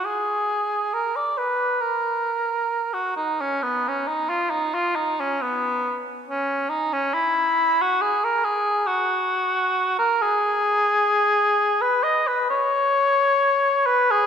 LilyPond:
\new Staff \with { instrumentName = "Cor anglais" } { \time 4/4 \key aes \dorian \tempo 4 = 67 aes'4 bes'16 d''16 ces''8 bes'4~ bes'16 ges'16 ees'16 des'16 | ces'16 des'16 ees'16 f'16 ees'16 f'16 ees'16 des'16 ces'8. r16 des'8 ees'16 des'16 | fes'8. ges'16 aes'16 bes'16 aes'8 ges'4~ ges'16 bes'16 aes'8~ | aes'4~ aes'16 ces''16 ees''16 ces''16 des''4. ces''16 aes'16 | }